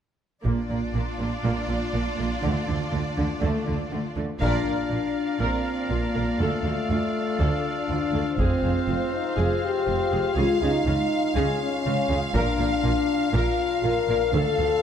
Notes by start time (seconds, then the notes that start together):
0.44 A#1 A#2 A#3 D4 F4 D5, taiko
0.69 A#1 A#2 A#3
0.94 A#1 A#2 A#3
1.19 A#1 A#2 A#3
1.44 A#1 A#2 A#3
1.69 A#1 A#2 A#3
1.93 A#1 A#2 A#3
2.17 A#1 A#2 A#3
2.42 D2 D3 A3
2.67 D2 D3 A3
2.92 D2 D3 A3
3.16 D2 D3 A3
3.41 D2 D3 A3
3.66 D2 D3 A3
3.92 D2 D3 A3
4.16 D2 D3 A3
4.40 A#1 A#2 D4 F4 A#4 D5 F5, taiko
4.65 A#1 A#2 A#4
4.90 A#1 A#2 F4
5.39 A#1 A#2 C4 A#4
5.90 A#1 A#2 A#3 F4
6.15 A#1 A#2 A#4
6.39 D2 A3 A4
6.63 D2 A4
6.89 D2 F4
7.39 D2 D4 A4
7.89 D2 F4
8.12 D2 A4
8.37 F1 F2 G#3 C4 G#4 C5 F5, taiko
8.63 F1 F2 G#4
8.88 F1 F2 F4
9.13 D#4
9.37 F1 F2 F4 G#4
9.64 G4
9.86 F1 F2 F4
10.12 F1 F2 G#4
10.36 C#2 C#3 F4 G#4 F5
10.61 C#2 C#3 D#4 G#4
10.86 C#2 C#3 F4
11.35 C#2 C#3 C#4 G#4
11.61 C#4
11.85 C#2 C#3 F4
12.10 C#2 C#3 G#4
12.34 A#1 A#2 D4 A#4 F5, taiko
12.59 A#1 A#2 A#4
12.84 A#1 A#2 F4
13.33 A#1 A#2 F4 A#4
13.83 A#1 A#2 F4 A#4
14.08 A#1 A#2 A#4
14.33 D2 A4 F5
14.59 D2 A4